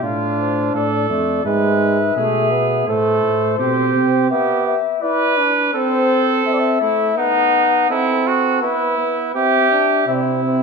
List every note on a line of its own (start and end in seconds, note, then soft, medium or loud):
0.02 0.73 A2 medium
0.02 1.08 D4 medium
0.02 0.73 F4 medium
0.02 0.38 F5 medium
0.39 0.75 C5 medium
0.74 1.09 A2 medium
0.74 1.44 A4 medium
0.74 1.45 D5 medium
1.10 1.44 F2 medium
1.10 1.44 A3 medium
1.45 2.15 G#2 medium
1.45 1.99 G#3 medium
1.45 2.15 B4 medium
1.45 2.85 E5 medium
2.16 2.86 B2 medium
2.16 2.53 A3 medium
2.16 2.86 G#4 medium
2.51 2.87 B3 medium
2.87 3.22 A2 medium
2.87 3.57 A3 medium
2.87 3.58 A4 medium
2.87 4.27 C5 medium
3.23 3.58 A2 medium
3.59 3.94 B2 medium
3.59 4.29 C4 medium
3.59 4.29 G4 medium
3.95 4.30 C3 medium
4.30 4.76 B3 medium
4.30 4.76 G4 medium
4.30 4.65 E5 medium
4.66 5.03 E5 medium
5.02 5.39 E4 medium
5.02 5.70 B4 loud
5.02 5.48 D5 medium
5.37 5.73 D4 medium
5.74 6.44 C4 medium
5.74 6.80 A4 medium
5.74 6.42 C5 medium
6.46 6.80 C4 medium
6.46 6.54 E5 medium
6.52 6.61 D5 medium
6.59 7.17 E5 medium
6.81 7.19 A3 medium
6.81 7.17 E4 medium
7.17 7.90 B3 medium
7.17 7.89 D#4 loud
7.17 7.89 F#5 medium
7.90 8.64 C4 medium
7.90 8.29 E4 loud
7.90 8.63 A4 medium
8.27 8.62 F#4 medium
8.62 8.98 B3 medium
8.62 9.33 E4 medium
8.62 9.34 B4 medium
8.98 9.36 B3 medium
9.34 9.71 C4 medium
9.34 10.06 G4 medium
9.34 10.06 E5 medium
9.72 10.07 D4 medium
10.08 10.63 C3 medium
10.08 10.42 C4 medium
10.08 10.63 E4 medium
10.08 10.15 E5 medium
10.14 10.23 D5 medium
10.21 10.63 E5 medium
10.44 10.63 C4 medium